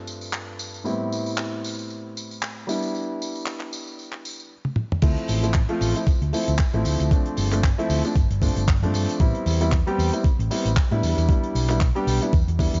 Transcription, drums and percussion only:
0.07 tambourine medium
0.21 tambourine soft
0.33 clap loud
0.59 tambourine medium
0.74 tambourine soft
0.86 tambourine soft
1.12 tambourine medium
1.26 tambourine soft
1.38 clap loud
1.38 tambourine soft
1.64 tambourine medium
1.79 tambourine soft
1.90 tambourine soft
2.17 tambourine medium
2.31 tambourine soft
2.42 clap loud
2.42 tambourine soft
2.69 tambourine medium
2.82 tambourine soft
2.95 tambourine soft
3.22 tambourine medium
3.35 tambourine soft
3.46 clap loud
3.46 tambourine soft
3.60 clap soft
3.73 tambourine medium
3.87 tambourine soft
3.99 tambourine soft
4.12 clap soft
4.25 tambourine medium
4.40 tambourine soft
4.65 high tom soft
4.76 mid tom medium
4.92 mid tom medium
5.02 kick loud
5.02 closed hi-hat medium
5.02 crash loud
5.02 tambourine soft
5.17 closed hi-hat soft
5.28 open hi-hat loud
5.28 tambourine medium
5.44 closed hi-hat medium
5.44 tambourine soft
5.54 kick loud
5.54 clap loud
5.54 closed hi-hat medium
5.54 tambourine soft
5.69 closed hi-hat soft
5.81 open hi-hat loud
5.81 tambourine medium
5.96 closed hi-hat medium
5.96 tambourine soft
6.06 kick loud
6.06 closed hi-hat medium
6.06 tambourine soft
6.22 closed hi-hat soft
6.33 open hi-hat loud
6.33 tambourine medium
6.48 closed hi-hat medium
6.48 tambourine soft
6.58 kick loud
6.58 clap loud
6.58 closed hi-hat medium
6.58 tambourine soft
6.73 closed hi-hat soft
6.85 open hi-hat loud
6.85 tambourine medium
7.00 closed hi-hat medium
7.00 tambourine soft
7.11 kick loud
7.11 closed hi-hat medium
7.26 closed hi-hat soft
7.37 open hi-hat loud
7.37 tambourine medium
7.52 clap soft
7.52 closed hi-hat medium
7.52 tambourine soft
7.63 kick loud
7.63 clap loud
7.63 closed hi-hat medium
7.79 closed hi-hat soft
7.90 open hi-hat loud
7.90 tambourine medium
8.05 closed hi-hat medium
8.05 tambourine soft
8.16 kick loud
8.16 closed hi-hat medium
8.16 tambourine soft
8.31 closed hi-hat soft
8.42 kick medium
8.42 open hi-hat loud
8.42 tambourine medium
8.57 closed hi-hat medium
8.57 tambourine soft
8.68 kick loud
8.68 clap loud
8.68 closed hi-hat medium
8.83 closed hi-hat soft
8.94 open hi-hat loud
8.94 tambourine medium
9.09 closed hi-hat medium
9.09 tambourine soft
9.20 kick loud
9.20 closed hi-hat medium
9.20 tambourine soft
9.35 closed hi-hat soft
9.46 open hi-hat loud
9.46 tambourine medium
9.61 closed hi-hat medium
9.61 tambourine soft
9.72 kick loud
9.72 clap loud
9.72 closed hi-hat medium
9.87 closed hi-hat soft
9.99 open hi-hat loud
9.99 tambourine medium
10.13 closed hi-hat medium
10.13 tambourine soft
10.24 kick loud
10.24 closed hi-hat medium
10.24 tambourine soft
10.40 closed hi-hat soft
10.51 open hi-hat loud
10.51 tambourine medium
10.66 closed hi-hat medium
10.66 tambourine soft
10.77 kick loud
10.77 clap loud
10.77 closed hi-hat medium
10.91 closed hi-hat soft
11.03 open hi-hat loud
11.03 tambourine medium
11.18 closed hi-hat medium
11.18 tambourine soft
11.29 kick loud
11.29 closed hi-hat medium
11.29 tambourine soft
11.44 closed hi-hat soft
11.55 open hi-hat loud
11.55 tambourine medium
11.69 clap soft
11.69 closed hi-hat medium
11.69 tambourine soft
11.81 kick loud
11.81 clap loud
11.81 closed hi-hat medium
11.96 closed hi-hat soft
12.07 open hi-hat loud
12.07 tambourine medium
12.22 closed hi-hat medium
12.22 tambourine soft
12.33 kick loud
12.33 closed hi-hat medium
12.33 tambourine soft
12.48 closed hi-hat soft
12.59 kick medium
12.59 open hi-hat loud
12.59 tambourine medium
12.74 closed hi-hat medium
12.74 tambourine soft

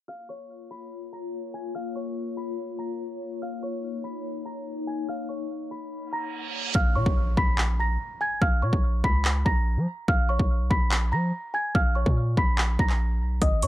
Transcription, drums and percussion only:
6.75 kick loud
7.06 kick medium
7.37 kick loud
7.58 clap loud
8.42 kick loud
8.73 kick medium
9.04 kick loud
9.25 clap loud
9.46 kick loud
10.08 kick loud
10.39 kick medium
10.71 kick loud
10.91 clap loud
11.75 kick loud
12.06 kick medium
12.37 kick loud
12.58 clap loud
12.79 kick loud
12.90 clap medium
13.42 kick loud
13.42 closed hi-hat medium
13.62 closed hi-hat loud

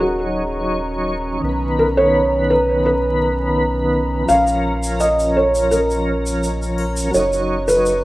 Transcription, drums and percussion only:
4.29 shaker medium
4.47 shaker soft
4.83 shaker medium
5.00 shaker medium
5.19 shaker soft
5.55 shaker medium
5.72 shaker medium
5.90 shaker soft
6.26 shaker medium
6.43 shaker medium
6.62 shaker soft
6.78 triangle medium
6.97 shaker medium
7.14 shaker medium
7.33 shaker soft
7.69 shaker medium
7.86 shaker medium

